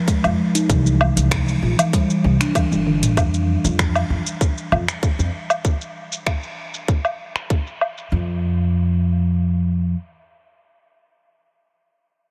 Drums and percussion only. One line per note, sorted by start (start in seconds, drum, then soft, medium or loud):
0.08 kick loud
0.08 closed hi-hat soft
0.08 shaker medium
0.24 low woodblock medium
0.24 shaker soft
0.55 closed hi-hat medium
0.55 shaker medium
0.70 kick loud
0.70 closed hi-hat soft
0.70 shaker medium
0.86 shaker soft
1.01 low woodblock medium
1.17 closed hi-hat medium
1.17 shaker medium
1.31 finger snap medium
1.31 kick loud
1.31 closed hi-hat soft
1.31 shaker medium
1.48 shaker soft
1.79 closed hi-hat medium
1.79 low woodblock medium
1.79 shaker medium
1.93 kick loud
1.93 closed hi-hat soft
1.93 shaker medium
2.10 shaker soft
2.41 finger snap medium
2.41 closed hi-hat medium
2.41 shaker medium
2.55 kick loud
2.55 closed hi-hat soft
2.55 high tom medium
2.55 low woodblock medium
2.55 shaker medium
2.72 high tom medium
2.72 shaker soft
2.86 mid tom medium
3.03 closed hi-hat medium
3.03 mid tom medium
3.03 shaker medium
3.17 kick loud
3.17 low woodblock medium
3.17 shaker medium
3.34 shaker soft
3.65 shaker medium
3.79 finger snap medium
3.79 kick loud
3.79 shaker medium
3.95 low woodblock medium
3.95 shaker soft
4.27 shaker medium
4.41 kick loud
4.41 shaker medium
4.58 shaker soft
4.72 low woodblock medium
4.88 finger snap medium
4.88 shaker medium
5.03 kick loud
5.03 shaker medium
5.20 shaker soft
5.50 low woodblock medium
5.50 shaker medium
5.65 kick loud
5.65 shaker medium
5.81 shaker soft
6.12 shaker medium
6.27 finger snap medium
6.27 kick loud
6.27 low woodblock medium
6.27 shaker medium
6.43 shaker soft
6.74 shaker medium
6.88 kick loud
6.88 shaker medium
7.05 low woodblock medium
7.05 shaker soft
7.36 finger snap medium
7.36 shaker medium
7.50 kick loud
7.50 shaker soft
7.67 shaker soft
7.81 low woodblock medium
7.98 shaker medium